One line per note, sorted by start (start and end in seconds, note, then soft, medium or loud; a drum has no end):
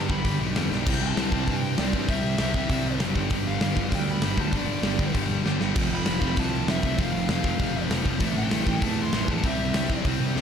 0.00 0.55 G2 medium
0.00 0.55 D3 medium
0.00 0.56 G3 loud
0.09 0.22 G1 medium
0.09 0.25 G2 medium
0.09 0.25 D3 medium
0.09 0.24 G3 medium
0.09 0.24 B3 medium
0.09 0.23 D4 medium
0.09 0.39 B5 loud
0.09 kick medium
0.24 0.37 G1 loud
0.24 0.39 G2 medium
0.24 0.40 D3 medium
0.24 0.41 G3 medium
0.24 0.41 B3 medium
0.24 0.42 D4 loud
0.24 kick loud
0.24 open hi-hat medium
0.40 0.53 B1 loud
0.40 0.56 G2 medium
0.40 0.56 D3 medium
0.40 0.56 G3 medium
0.40 0.55 B3 medium
0.40 0.55 D4 medium
0.56 0.68 F2 loud
0.56 0.69 G2 medium
0.56 0.70 D3 medium
0.56 0.70 G3 medium
0.56 0.71 B3 medium
0.56 0.71 D4 medium
0.56 snare loud
0.56 open hi-hat medium
0.70 0.86 B1 medium
0.70 0.85 G2 medium
0.70 0.85 D3 medium
0.70 0.85 G3 medium
0.70 0.86 B3 medium
0.70 0.86 D4 medium
0.70 snare medium
0.85 0.99 C2 loud
0.85 1.15 C3 medium
0.85 1.17 G3 loud
0.85 1.16 C4 medium
0.85 1.17 E4 loud
0.85 kick loud
0.85 crash loud
1.02 1.14 C2 medium
1.02 1.50 A5 loud
1.16 1.29 C2 medium
1.16 1.33 C3 medium
1.16 1.33 G3 loud
1.16 1.32 C4 medium
1.16 1.31 E4 loud
1.16 snare loud
1.16 open hi-hat medium
1.31 1.44 C2 medium
1.31 1.46 C3 medium
1.31 1.48 G3 medium
1.31 1.48 C4 medium
1.31 1.48 E4 medium
1.31 kick medium
1.47 1.73 G2 loud
1.47 1.77 C3 medium
1.47 1.79 G3 loud
1.47 1.78 C4 loud
1.47 1.79 E4 loud
1.47 1.76 G5 medium
1.47 kick loud
1.47 open hi-hat medium
1.78 1.91 C2 loud
1.78 1.95 C3 medium
1.78 1.95 G3 loud
1.78 1.93 C4 loud
1.78 1.93 E4 loud
1.78 2.10 D5 loud
1.78 snare loud
1.78 open hi-hat medium
1.93 2.06 G2 medium
1.93 2.09 C3 medium
1.93 2.10 G3 medium
1.93 2.11 C4 medium
1.93 2.11 E4 medium
1.93 kick medium
2.08 2.21 C2 loud
2.08 2.39 C3 loud
2.08 2.40 G3 loud
2.08 2.40 C4 loud
2.08 2.40 E4 loud
2.08 2.38 E5 loud
2.08 kick loud
2.08 open hi-hat medium
2.24 2.37 C2 medium
2.38 2.64 C2 medium
2.38 2.55 C3 medium
2.38 2.56 G3 medium
2.38 2.54 C4 medium
2.38 2.54 E4 loud
2.38 2.97 E5 medium
2.38 snare loud
2.38 open hi-hat medium
2.54 2.69 C3 medium
2.54 2.71 G3 medium
2.54 2.71 C4 medium
2.54 2.72 E4 medium
2.54 kick medium
2.69 2.83 C2 loud
2.69 2.99 C3 loud
2.69 3.00 G3 loud
2.69 3.00 C4 loud
2.69 3.00 E4 loud
2.69 kick loud
2.69 open hi-hat medium
2.85 2.98 C2 medium
3.00 3.13 F#1 medium
3.00 3.15 C3 medium
3.00 3.17 G3 medium
3.00 3.15 C4 medium
3.00 3.16 E4 loud
3.00 snare loud
3.00 open hi-hat medium
3.15 3.28 G1 medium
3.15 3.33 G2 loud
3.15 3.32 D3 loud
3.15 3.32 G3 loud
3.15 3.31 B3 loud
3.15 3.31 D4 loud
3.15 kick medium
3.30 3.44 G1 loud
3.30 3.63 G2 loud
3.30 3.62 D3 medium
3.30 3.62 G3 loud
3.30 3.62 B3 loud
3.30 3.61 D4 loud
3.30 kick loud
3.30 open hi-hat medium
3.47 3.60 G1 medium
3.47 3.90 F5 loud
3.61 3.75 G1 medium
3.61 3.76 G2 medium
3.61 3.76 D3 medium
3.61 3.77 G3 medium
3.61 3.77 B3 loud
3.61 3.78 D4 loud
3.61 snare loud
3.61 open hi-hat medium
3.77 3.90 G1 medium
3.77 3.93 G2 medium
3.77 3.92 D3 medium
3.77 3.92 G3 medium
3.77 3.91 B3 medium
3.77 3.91 D4 medium
3.77 kick medium
3.92 4.17 D2 medium
3.92 4.23 G2 medium
3.92 4.23 D3 medium
3.92 4.22 G3 loud
3.92 4.22 B3 loud
3.92 4.21 D4 loud
3.92 4.10 G5 loud
3.92 kick loud
3.92 open hi-hat medium
4.11 4.40 B5 loud
4.22 4.35 G1 loud
4.22 4.36 G2 medium
4.22 4.37 D3 loud
4.22 4.38 G3 loud
4.22 4.38 B3 medium
4.22 4.38 D4 loud
4.22 snare loud
4.22 open hi-hat medium
4.37 4.50 D2 medium
4.37 4.53 G2 medium
4.37 4.52 D3 medium
4.37 4.52 G3 medium
4.37 4.51 B3 loud
4.37 4.51 D4 medium
4.37 4.56 A5 medium
4.37 kick medium
4.52 4.66 G1 loud
4.52 4.84 G2 loud
4.52 4.84 D3 loud
4.52 4.83 G3 medium
4.52 4.82 B3 loud
4.52 4.81 D4 loud
4.52 5.12 D5 medium
4.52 kick loud
4.52 open hi-hat medium
4.67 4.81 G1 medium
4.83 5.09 G1 loud
4.83 4.98 G2 medium
4.83 4.98 D3 medium
4.83 4.98 G3 medium
4.83 4.99 B3 loud
4.83 4.99 D4 loud
4.83 snare loud
4.83 open hi-hat medium
4.99 5.14 G2 medium
4.99 5.13 D3 medium
4.99 5.13 G3 medium
4.99 5.13 B3 medium
4.99 5.12 D4 loud
4.99 kick medium
5.13 5.27 G1 loud
5.13 5.47 G2 medium
5.13 5.47 D3 medium
5.13 5.46 G3 loud
5.13 5.45 B3 loud
5.13 5.45 D4 loud
5.13 kick loud
5.13 open hi-hat medium
5.29 5.42 G1 medium
5.43 5.58 G1 loud
5.43 5.60 G3 loud
5.43 5.62 B3 medium
5.43 5.63 D4 medium
5.43 snare medium
5.47 5.61 G2 medium
5.47 5.61 D3 medium
5.47 5.61 G3 medium
5.61 5.74 G1 medium
5.61 5.76 G2 medium
5.61 5.76 D3 loud
5.61 5.76 G3 medium
5.61 5.77 B3 medium
5.61 5.77 D4 medium
5.61 snare medium
5.75 5.89 F1 loud
5.75 6.05 F2 loud
5.75 6.05 C3 loud
5.75 6.08 F3 medium
5.75 6.08 A3 medium
5.75 6.09 C4 loud
5.75 6.10 F4 loud
5.75 kick loud
5.75 open hi-hat medium
5.75 crash loud
5.92 6.04 F1 medium
5.92 6.40 B5 loud
6.06 6.20 F1 medium
6.06 6.21 F2 medium
6.06 6.20 C3 loud
6.06 6.23 F3 medium
6.06 6.24 A3 loud
6.06 6.23 C4 medium
6.06 snare loud
6.06 open hi-hat medium
6.10 6.21 F4 loud
6.21 6.34 F1 medium
6.21 6.36 F2 medium
6.21 6.36 C3 medium
6.21 6.36 F3 medium
6.21 6.37 A3 medium
6.21 6.38 C4 medium
6.21 6.37 F4 medium
6.21 kick medium
6.36 6.62 C2 loud
6.36 6.67 F2 medium
6.36 6.67 C3 loud
6.36 6.68 F3 loud
6.36 6.69 A3 medium
6.36 6.70 C4 loud
6.36 6.70 F4 loud
6.36 6.70 A5 loud
6.36 kick loud
6.36 open hi-hat medium
6.67 6.80 F1 loud
6.67 6.84 F2 medium
6.67 6.83 C3 medium
6.67 6.83 F3 medium
6.67 6.82 A3 loud
6.67 6.83 C4 loud
6.67 6.81 F4 medium
6.67 6.97 E5 medium
6.67 snare loud
6.67 open hi-hat medium
6.82 6.96 C2 medium
6.82 6.98 F2 medium
6.82 6.99 C3 medium
6.82 6.97 F3 medium
6.82 6.98 A3 medium
6.82 6.99 C4 medium
6.82 6.98 F4 loud
6.82 kick medium
6.98 7.11 F1 loud
6.98 7.27 F2 loud
6.98 7.27 C3 loud
6.98 7.29 F3 loud
6.98 7.31 A3 medium
6.98 7.32 C4 loud
6.98 7.32 F4 loud
6.98 7.29 F5 loud
6.98 kick loud
6.98 open hi-hat medium
7.14 7.27 F1 medium
7.28 7.54 F1 medium
7.28 7.45 F2 loud
7.28 7.45 C3 loud
7.28 7.46 F3 medium
7.28 7.46 A3 medium
7.28 7.46 C4 loud
7.28 7.87 F5 medium
7.28 snare loud
7.28 open hi-hat medium
7.33 7.44 F4 loud
7.44 7.58 F2 medium
7.44 7.58 C3 medium
7.44 7.59 F3 medium
7.44 7.60 A3 medium
7.44 7.61 C4 medium
7.44 7.62 F4 medium
7.44 kick medium
7.59 7.72 F1 medium
7.59 7.89 F2 medium
7.59 7.90 C3 loud
7.59 7.90 F3 medium
7.59 7.90 A3 loud
7.59 7.92 C4 loud
7.59 7.91 F4 loud
7.59 kick loud
7.59 open hi-hat medium
7.75 7.88 F1 loud
7.89 8.02 F1 loud
7.89 8.05 F2 medium
7.89 8.04 C3 medium
7.89 8.06 F3 medium
7.89 8.05 A3 medium
7.89 8.06 C4 loud
7.89 8.04 F4 loud
7.89 snare loud
7.89 open hi-hat medium
8.05 8.18 F1 medium
8.05 8.20 F2 medium
8.05 8.20 C3 medium
8.05 8.21 F3 medium
8.05 8.21 A3 medium
8.05 8.23 C4 medium
8.05 8.20 F4 loud
8.05 kick medium
8.20 8.33 A1 loud
8.20 8.51 A2 loud
8.20 8.52 E3 loud
8.20 8.51 A3 medium
8.20 8.52 C4 loud
8.20 8.53 E4 loud
8.20 kick loud
8.20 open hi-hat medium
8.37 8.49 A1 medium
8.37 8.80 G5 loud
8.51 8.64 A1 medium
8.51 8.68 A2 loud
8.51 8.68 E3 medium
8.51 8.67 A3 loud
8.51 8.67 C4 loud
8.51 8.66 E4 loud
8.51 snare loud
8.51 open hi-hat medium
8.66 8.79 A1 medium
8.66 8.80 A2 medium
8.66 8.81 E3 medium
8.66 8.81 A3 medium
8.66 8.82 C4 medium
8.66 8.83 E4 loud
8.66 kick medium
8.81 9.07 E2 loud
8.81 9.11 A2 loud
8.81 9.12 E3 loud
8.81 9.13 A3 loud
8.81 9.13 C4 loud
8.81 9.13 E4 loud
8.81 9.01 A5 loud
8.81 kick loud
8.81 open hi-hat medium
9.01 9.31 C6 loud
9.12 9.25 A1 loud
9.12 9.29 A2 medium
9.12 9.28 E3 loud
9.12 9.28 A3 medium
9.12 9.28 C4 loud
9.12 9.27 E4 loud
9.12 snare loud
9.12 open hi-hat medium
9.28 9.41 E2 medium
9.28 9.44 A2 medium
9.28 9.42 E3 medium
9.28 9.43 A3 medium
9.28 9.43 C4 loud
9.28 9.43 E4 loud
9.28 9.46 A5 loud
9.28 kick medium
9.43 9.56 C2 loud
9.43 9.72 C3 medium
9.43 9.73 G3 medium
9.43 9.73 C4 loud
9.43 9.74 E4 loud
9.43 10.02 E5 medium
9.43 kick loud
9.43 open hi-hat medium
9.59 9.71 C2 medium
9.73 9.99 C2 medium
9.73 9.90 C3 medium
9.73 9.89 G3 medium
9.73 9.88 C4 loud
9.73 9.88 E4 loud
9.73 snare loud
9.73 open hi-hat medium
9.89 10.04 C3 medium
9.89 10.04 G3 medium
9.89 10.05 C4 medium
9.89 10.06 E4 loud
9.89 kick medium
10.05 10.17 C2 loud
10.05 10.34 C3 medium
10.05 10.35 G3 medium
10.05 10.36 C4 loud
10.05 10.36 E4 loud
10.05 kick loud
10.05 open hi-hat medium
10.20 10.33 C2 medium
10.35 10.41 C2 loud
10.35 10.41 C3 medium
10.35 10.41 G3 medium
10.35 10.41 C4 loud
10.35 10.41 E4 medium
10.35 snare medium